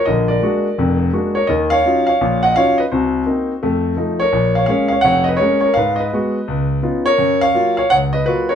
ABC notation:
X:1
M:4/4
L:1/8
Q:"Swing" 1/4=168
K:A#phr
V:1 name="Grand piano"
[Ad] [A=d]4 z2 [Ac] | [Ad] [ce]2 [ce]2 [df] [ce] [Bd] | [_G=c]4 z3 [A^c]- | [Ac] [ce] [ce] [ce] [cf] [Bd] [Ac] [Ac] |
[Be] [Bd]4 z2 [Ac]- | [Ac] [ce]2 [ce] [cf] [Bd] [FB] [Ac] |]
V:2 name="Grand piano"
[A,,,=D,]2 [G,A,=DF] z [E,,,E,,]2 [G,A,DF] z | [D,,D,]2 [F,CDE] z [A,,,A,,]2 [F,CDE] z | [=C,,=C,]2 [_B,=C_E] z [=F,,=A,]2 [=F,A,E] z | A,,,2 [G,A,C] z [E,,,E,,]2 [G,A,C] z |
G,,2 [G,B,F] z C,,2 [B,CDE] z | F,,2 [F,A,E] z C,,2 [F,A,E] z |]